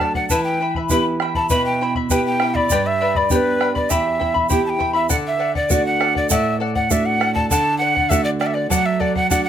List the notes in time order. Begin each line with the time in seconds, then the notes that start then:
Already playing: F#3 A3 D4 F#4 A5
0.00 A4 D5 F#5, bombo rim, bombo low
0.14 D5 F#5, bombo low
0.29 E3 E4 B4 E5 G5 A5 B5, bombo low, shaker
0.44 G5
0.60 E4 E5 G5 B5
0.75 E4 E5 B5, bombo low
0.89 B3 E4 G4 B4 E5 G5 B5, bombo low, shaker
1.20 E4 E5 G5 B5, bombo rim
1.35 E4 E5 A5 B5, bombo low
1.50 B2 E4 B4 E5 G5 B5, bombo low, shaker
1.66 G5
1.81 E4 E5 G5 B5
1.95 E4 E5 B5, bombo low
2.10 B3 E4 G4 B4 E5 G5 B5, bombo low, shaker
2.26 G5
2.40 E4 E5 G5 B5, bombo rim
2.55 E4 D5 E5 B5, bombo low
2.70 G2 G4 B4 D5 G5 B5, bombo low, shaker
2.87 E5
3.01 B4 D5 G5 B5
3.15 B4 D5 B5, bombo low
3.30 B3 D4 G4 B4 D5 G5 B5, bombo low, shaker
3.36 B4
3.60 B4 D5 G5 B5, bombo rim
3.75 B4 D5 B5, bombo low
3.90 E2 E4 G4 E5 G5 B5, bombo low, shaker
4.20 E4 E5 G5 B5, bombo low
4.34 E4 E5 B5, bombo low
4.49 B3 E4 G4 E5 G5 B5, bombo low, shaker
4.66 G5 A5
4.79 E4 E5 G5 B5, bombo low
4.93 E4 E5 B5
5.09 D3 A4 D5 F#5, bombo low, shaker
5.27 E5
5.39 A4 D5 F#5
5.55 D5 F#5, bombo low
5.70 A3 D4 F#4 A4 D5 F#5, bombo low, shaker
5.86 F#5
6.00 A4 D5 F#5, bombo rim
6.15 D5 F#5, bombo low
6.30 A2 A4 D5 E5 F#5, bombo low, shaker
6.60 A4 D5 F#5
6.75 D5 F#5, bombo low
6.90 A3 D4 F#4 A4 D5 E5 F#5, bombo low, shaker
7.06 F#5
7.20 A4 D5 F#5, bombo rim
7.35 D5 F#5 A5, bombo low
7.50 D3 A4 D5 F#5 A5, bombo low, shaker
7.78 A4 D5 F#5
7.95 D5 F#5, bombo low
8.10 A3 D4 F#4 A4 D5 E5 F#5, bombo low, shaker
8.24 D5
8.40 A4 D5 F#5, bombo rim
8.46 E5
8.54 D5 F#5
8.70 F#3 A4 D5 F#5, bombo low, shaker
8.86 E5
9.00 A4 D5 F#5, bombo low
9.16 D5 F#5, bombo low
9.30 A3 D4 F#4 A4 D5 F#5, bombo low, shaker
9.45 F#5